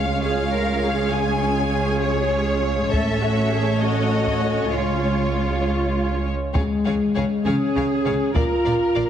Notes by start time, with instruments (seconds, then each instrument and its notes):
Already playing: double bass section C#2, french horn section G#3 C#4, viola section G#3 C#4, violin section F4 C#5 F5
0.24 cello section G#4, violin section F5
0.54 cello section A#4
0.84 cello section G#4
1.13 violin section G#5
2.02 violin section C#5
2.91 double bass section A1, french horn section A3 C#4, viola section A3 C#4, violin section A4 C#5 E5, cello section A4, taiko
3.22 cello section F#4
3.51 cello section G#4
3.81 cello section F#4, violin section D#5
4.26 taiko
4.71 double bass section C#2, french horn section G#3 F4, viola section G#3, violin section F4 C#5, cello section F4
6.54 double bass section C#2, cello section C#3, french horn section G#3, violin section G#4 C#5 F5, taiko
6.85 double bass section C#2, cello section C#3, violin section G#4 C#5 F5
7.16 double bass section C#2, cello section C#3, violin section G#4 C#5 F5
7.45 double bass section C#2, cello section C#3, french horn section C#4, violin section G#4 C#5 F5, viola section G#4
7.75 double bass section C#2, cello section C#3, violin section G#4 C#5 F5
8.05 double bass section C#2, cello section C#3, violin section G#4 C#5 F5
8.33 double bass section A#1, cello section A#2, french horn section F4, violin section A#4 D5 F5, viola section A#4, taiko
8.65 double bass section A#1, cello section A#2, violin section A#4 D5 F5
8.95 double bass section A#1, cello section A#2, violin section A#4 D5 F5